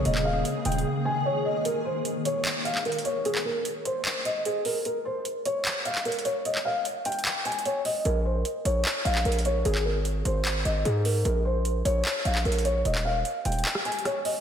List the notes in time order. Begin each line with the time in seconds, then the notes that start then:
Already playing: A#3
0.05 D#1 D#3 G#4 D#5, closed hi-hat
0.15 clap
0.25 F5
0.45 closed hi-hat
0.65 D#1 G5, closed hi-hat
0.72 closed hi-hat
0.78 closed hi-hat
1.05 G#5
1.25 C#5
1.45 D#5
1.65 A#4, closed hi-hat
1.85 C5
2.05 closed hi-hat
2.25 C#5, closed hi-hat
2.45 clap, closed hi-hat
2.65 F5, closed hi-hat
2.75 clap
2.85 A#4, closed hi-hat
2.92 closed hi-hat
2.99 closed hi-hat
3.05 C#5, closed hi-hat
3.25 G#4, closed hi-hat
3.35 clap
3.45 A#4
3.65 closed hi-hat
3.85 C5, closed hi-hat
4.05 clap, closed hi-hat
4.25 D#5, closed hi-hat
4.45 G#4, closed hi-hat
4.65 A#4, open hi-hat
4.85 A#4, closed hi-hat
5.05 C5
5.25 closed hi-hat
5.45 C#5, closed hi-hat
5.65 clap, closed hi-hat
5.85 F5, closed hi-hat
5.95 clap
6.05 A#4, closed hi-hat
6.12 closed hi-hat
6.19 closed hi-hat
6.25 C#5, closed hi-hat
6.45 D#5, closed hi-hat
6.55 clap
6.65 F5
6.85 closed hi-hat
7.05 G5, closed hi-hat
7.12 closed hi-hat
7.19 closed hi-hat
7.25 clap, closed hi-hat
7.45 G#5, closed hi-hat
7.52 closed hi-hat
7.59 closed hi-hat
7.65 C#5, closed hi-hat
7.85 D#5, open hi-hat
8.05 A#1 A#4, closed hi-hat
8.25 C5
8.45 closed hi-hat
8.65 A#1 C#5, closed hi-hat
8.85 clap, closed hi-hat
9.05 A#1 F5, closed hi-hat
9.15 clap
9.25 A#1 A#4, closed hi-hat
9.32 closed hi-hat
9.39 closed hi-hat
9.45 C#5, closed hi-hat
9.65 G#1 G#4, closed hi-hat
9.75 clap
9.85 A#4
10.05 closed hi-hat
10.25 G#1 C5, closed hi-hat
10.45 clap, closed hi-hat
10.65 G#1 D#5, closed hi-hat
10.85 G#2 G#4, closed hi-hat
11.05 A#4, open hi-hat
11.25 A#1 A#4, closed hi-hat
11.45 C5
11.65 closed hi-hat
11.85 A#1 C#5, closed hi-hat
12.05 clap, closed hi-hat
12.25 A#1 F5, closed hi-hat
12.35 clap
12.45 A#1 A#4, closed hi-hat
12.52 closed hi-hat
12.59 closed hi-hat
12.65 C#5, closed hi-hat
12.85 D#1 D#5, closed hi-hat
12.95 clap
13.05 F5
13.25 closed hi-hat
13.45 D#1 G5, closed hi-hat
13.52 closed hi-hat
13.59 closed hi-hat
13.65 clap, closed hi-hat
13.75 cross-stick
13.85 G#5, closed hi-hat
13.92 closed hi-hat
13.99 closed hi-hat
14.05 C#5, cross-stick, closed hi-hat
14.25 D#5, open hi-hat